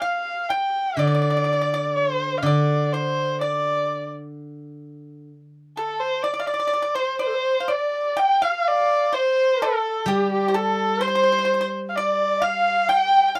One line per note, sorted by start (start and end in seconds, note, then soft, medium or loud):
0.01 0.50 F5 medium
0.01 0.47 F5 medium
0.49 1.01 G5 medium
0.49 0.96 G5 medium
0.97 2.41 D3 soft
0.97 1.06 D5 medium
0.97 1.97 D5 medium
1.07 1.13 D5 soft
1.15 1.21 D5 soft
1.22 1.29 D5 soft
1.30 1.36 D5 soft
1.37 1.43 D5 soft
1.44 1.51 D5 soft
1.53 1.60 D5 soft
1.61 1.68 D5 soft
1.74 2.41 D5 medium
1.96 2.39 C5 medium
2.38 2.45 F5 medium
2.43 5.28 D3 medium
2.43 2.94 D5 medium
2.43 2.90 D5 medium
2.92 3.40 C5 medium
2.92 3.38 C5 medium
3.41 4.08 D5 medium
5.77 6.21 A4 medium
5.77 6.01 A4 medium
6.00 6.24 C5 medium
6.23 6.40 D5 medium
6.23 6.31 D5 medium
6.34 6.38 D5 medium
6.40 6.46 D5 medium
6.40 6.48 F5 soft
6.47 6.96 D5 medium
6.47 6.53 D5 soft
6.54 6.58 D5 soft
6.60 6.66 D5 soft
6.67 6.72 D5 medium
6.74 6.81 D5 soft
6.82 6.90 D5 medium
6.95 7.20 C5 medium
6.95 7.18 C5 medium
7.19 7.28 C5 medium
7.19 7.73 C5 medium
7.19 7.67 D5 medium
7.26 7.36 A4 medium
7.34 7.70 C5 medium
7.60 7.68 F5 soft
7.68 8.14 D5 medium
7.68 8.19 D5 medium
7.68 8.21 D5 medium
8.17 8.40 G5 medium
8.17 8.44 G5 medium
8.42 9.09 F5 medium
8.42 9.16 F5 medium
8.42 8.69 F5 medium
8.68 9.15 D5 medium
9.13 9.57 C5 medium
9.13 9.64 C5 medium
9.62 10.07 A4 medium
9.62 10.05 A4 medium
9.62 10.10 A4 medium
10.06 12.88 G3 medium
10.06 10.45 G4 medium
10.06 10.30 G4 medium
10.06 10.32 G4 medium
10.32 10.57 G4 medium
10.32 10.54 G4 medium
10.48 10.55 C5 medium
10.54 10.98 A4 medium
10.54 11.03 A4 medium
11.01 11.07 C5 medium
11.01 11.72 C5 loud
11.01 11.72 C5 medium
11.08 11.14 C5 soft
11.15 11.22 C5 medium
11.23 11.30 C5 soft
11.32 11.37 C5 soft
11.38 11.44 C5 soft
11.45 11.52 C5 medium
11.54 11.60 C5 soft
11.61 11.67 C5 medium
11.89 11.97 F5 medium
11.96 12.45 D5 medium
11.96 12.44 D5 medium
11.96 12.40 D5 medium
12.42 12.85 F5 medium
12.42 12.91 F5 medium
12.42 12.91 F5 loud
12.89 13.32 G5 medium
12.89 13.28 G5 loud
12.89 13.36 G5 medium
13.28 13.37 G5 medium
13.35 13.40 F5 medium